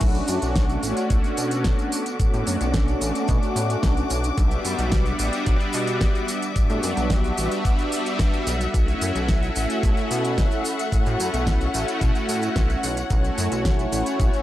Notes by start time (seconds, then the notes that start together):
Already playing: F#4
0.00 B1 A3 B3 C#4 D4 F#4 A4 D6, kick, closed hi-hat, tambourine, crash, cabasa
0.15 closed hi-hat, tambourine, cabasa
0.28 F#2, open hi-hat, tambourine, cabasa
0.42 B1, closed hi-hat, tambourine, cabasa
0.56 kick, snare, closed hi-hat, tambourine, cabasa
0.69 closed hi-hat, tambourine, cabasa
0.82 A1 A3 C#4 D4 F#4, open hi-hat, tambourine, cabasa
0.97 closed hi-hat, tambourine, cabasa
1.10 B1, kick, closed hi-hat, tambourine, cabasa
1.24 closed hi-hat, tambourine, cabasa
1.37 B2, open hi-hat, tambourine, cabasa
1.51 closed hi-hat, tambourine, cabasa
1.64 kick, snare, closed hi-hat, tambourine, cabasa
1.79 closed hi-hat, tambourine, cabasa
1.92 open hi-hat, tambourine, cabasa
2.06 closed hi-hat, tambourine, cabasa
2.19 A2 A3 C#4 D4 F#4, kick, closed hi-hat, tambourine, cabasa
2.34 A2, closed hi-hat, tambourine, cabasa
2.47 F#2, open hi-hat, tambourine, cabasa
2.61 B1, closed hi-hat, tambourine, cabasa
2.74 kick, snare, closed hi-hat, tambourine, cabasa
2.88 closed hi-hat, tambourine, cabasa
3.00 A1 A3 C#4 D4 F#4, open hi-hat, tambourine, cabasa
3.15 closed hi-hat, tambourine, cabasa
3.28 B2, kick, closed hi-hat, tambourine, cabasa
3.43 closed hi-hat, tambourine, cabasa
3.56 A2, open hi-hat, tambourine, cabasa
3.70 closed hi-hat, tambourine, cabasa
3.83 B1, kick, snare, closed hi-hat, tambourine, cabasa
3.97 closed hi-hat, tambourine, cabasa
4.10 B1, open hi-hat, tambourine, cabasa
4.24 closed hi-hat, tambourine, cabasa
4.37 B1 G3 B3 D4 F#4 E5, kick, closed hi-hat, tambourine, cabasa
4.51 closed hi-hat, tambourine, cabasa
4.65 F#2, open hi-hat, tambourine, cabasa
4.79 B1, closed hi-hat, tambourine, cabasa
4.92 kick, snare, closed hi-hat, tambourine, cabasa
5.06 closed hi-hat, tambourine, cabasa
5.18 A1 G3 B3 D4 F#4, open hi-hat, tambourine, cabasa
5.33 closed hi-hat, tambourine, cabasa
5.46 B1, kick, closed hi-hat, tambourine, cabasa
5.61 closed hi-hat, tambourine, cabasa
5.73 B2, open hi-hat, tambourine, cabasa
5.87 closed hi-hat, tambourine, cabasa
6.01 kick, snare, closed hi-hat, tambourine, cabasa
6.15 closed hi-hat, tambourine, cabasa
6.28 open hi-hat, tambourine, cabasa
6.42 closed hi-hat, tambourine, cabasa
6.55 A2 G3 B3 D4 F#4, kick, closed hi-hat, tambourine, cabasa
6.70 A2, closed hi-hat, tambourine, cabasa
6.83 F#2, open hi-hat, tambourine, cabasa
6.97 B1, closed hi-hat, tambourine, cabasa
7.10 kick, snare, closed hi-hat, tambourine, cabasa
7.24 closed hi-hat, tambourine, cabasa
7.37 A1 G3 B3 D4 F#4, open hi-hat, tambourine, cabasa
7.51 closed hi-hat, tambourine, cabasa
7.65 kick, closed hi-hat, tambourine, cabasa
7.79 closed hi-hat, tambourine, cabasa
7.92 G3 B3 D4 F#4, open hi-hat, tambourine, cabasa
8.06 closed hi-hat, tambourine, cabasa
8.19 kick, snare, closed hi-hat, tambourine, cabasa
8.34 closed hi-hat, tambourine, cabasa
8.47 B1 A4 F#5, open hi-hat, tambourine, cabasa
8.61 closed hi-hat, tambourine, cabasa
8.73 B1 A3 C#4 E4 F#4, kick, closed hi-hat, tambourine, cabasa
8.88 closed hi-hat, tambourine, cabasa
9.01 F#2, open hi-hat, tambourine, cabasa
9.15 B1, closed hi-hat, tambourine, cabasa
9.28 kick, snare, closed hi-hat, tambourine, cabasa
9.43 closed hi-hat, tambourine, cabasa
9.55 A1 A3 C#4 E4 F#4, open hi-hat, tambourine, cabasa
9.70 closed hi-hat, tambourine, cabasa
9.83 B1, kick, closed hi-hat, tambourine, cabasa
9.97 closed hi-hat, tambourine, cabasa
10.11 B2, open hi-hat, tambourine, cabasa
10.24 closed hi-hat, tambourine, cabasa
10.38 kick, snare, closed hi-hat, tambourine, cabasa
10.51 closed hi-hat, tambourine, cabasa
10.65 open hi-hat, tambourine, cabasa
10.79 closed hi-hat, tambourine, cabasa
10.91 A2 A3 C#4 E4 F#4, kick, closed hi-hat, tambourine, cabasa
11.06 A2, closed hi-hat, tambourine, cabasa
11.20 F#2, open hi-hat, tambourine, cabasa
11.34 B1, closed hi-hat, tambourine, cabasa
11.47 kick, snare, closed hi-hat, tambourine, cabasa
11.61 closed hi-hat, tambourine, cabasa
11.73 A1 A3 C#4 E4 F#4, open hi-hat, tambourine, cabasa
11.88 closed hi-hat, tambourine, cabasa
12.01 B2, kick, closed hi-hat, tambourine, cabasa
12.15 closed hi-hat, tambourine, cabasa
12.29 A2, open hi-hat, tambourine, cabasa
12.42 closed hi-hat, tambourine, cabasa
12.56 B1, kick, snare, closed hi-hat, tambourine, cabasa
12.70 closed hi-hat, tambourine, cabasa
12.83 B1 C#5, open hi-hat, tambourine, cabasa
12.97 closed hi-hat, tambourine, cabasa
13.09 B1 A3 C#4 E4 F#4, kick, closed hi-hat, tambourine, cabasa
13.24 closed hi-hat, tambourine, cabasa
13.38 F#2, open hi-hat, tambourine, cabasa
13.52 B1, closed hi-hat, tambourine, cabasa
13.65 kick, snare, closed hi-hat, tambourine, cabasa
13.79 closed hi-hat, tambourine, cabasa
13.91 A1 A3 C#4 E4 F#4, open hi-hat, tambourine, cabasa
14.06 closed hi-hat, tambourine, cabasa
14.20 B1, kick, closed hi-hat, tambourine, cabasa
14.33 closed hi-hat, tambourine, cabasa